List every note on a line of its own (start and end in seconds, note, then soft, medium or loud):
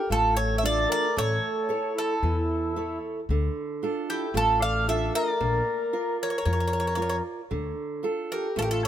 0.00 0.11 A#4 medium
0.10 0.85 A1 medium
0.10 0.63 A3 medium
0.10 0.36 F4 medium
0.10 0.36 A4 medium
0.37 0.56 A4 medium
0.37 0.56 C#5 loud
0.57 0.63 C#5 medium
0.57 0.65 E5 medium
0.63 1.06 D4 medium
0.63 1.06 F4 soft
0.63 0.88 A4 medium
0.63 1.07 A4 medium
0.63 0.90 D5 loud
0.89 1.15 A#4 loud
0.89 1.18 D5 loud
1.16 1.36 A1 loud
1.16 1.69 A3 medium
1.16 1.92 A4 medium
1.16 1.94 C#5 loud
1.69 2.12 E4 soft
1.69 2.12 A4 soft
1.69 2.13 C#5 medium
1.95 2.98 E4 medium
1.95 3.00 A4 medium
2.23 2.97 E2 medium
2.23 2.75 E3 medium
2.76 3.19 E4 medium
2.76 3.19 A4 soft
2.76 3.19 C#5 medium
3.29 3.48 D2 medium
3.29 3.81 D3 medium
3.83 4.25 D4 soft
3.83 4.25 F4 soft
3.83 4.25 A4 medium
4.09 4.34 E4 medium
4.09 4.34 G4 medium
4.34 5.09 A1 loud
4.34 4.86 A3 medium
4.34 4.60 F4 medium
4.34 4.61 A4 medium
4.59 4.85 D5 medium
4.59 4.87 F5 loud
4.87 5.30 D4 medium
4.87 5.31 F4 medium
4.87 5.12 A4 medium
4.87 5.31 A4 medium
4.87 5.15 E5 loud
5.15 6.17 A#4 loud
5.15 6.22 D5 loud
5.40 5.59 A#1 loud
5.40 5.92 A#3 medium
5.93 6.36 F4 medium
5.93 6.36 A#4 soft
5.93 6.36 D5 medium
6.21 7.22 A#4 medium
6.21 6.28 C#5 medium
6.30 6.36 C#5 medium
6.38 6.43 C#5 medium
6.45 7.20 F2 loud
6.45 6.97 F3 medium
6.45 6.51 C#5 soft
6.53 6.58 C#5 medium
6.60 6.65 C#5 soft
6.68 6.72 C#5 medium
6.73 6.79 C#5 soft
6.80 6.86 C#5 medium
6.87 6.93 C#5 soft
6.95 7.40 F4 medium
6.95 7.41 A#4 soft
6.95 7.01 C#5 medium
6.95 7.41 D5 medium
7.02 7.08 C#5 soft
7.09 7.15 C#5 medium
7.51 7.70 D2 medium
7.51 8.02 D3 medium
8.03 8.46 D4 medium
8.03 8.46 F4 soft
8.03 8.46 A4 medium
8.32 8.57 G4 medium
8.32 8.56 A#4 medium
8.56 8.88 A1 medium
8.56 8.88 A3 medium
8.56 8.64 F4 medium
8.56 8.62 A4 medium
8.62 8.69 G4 medium
8.62 8.70 A#4 medium
8.70 8.83 F4 medium
8.70 8.83 A4 medium
8.82 8.88 A4 medium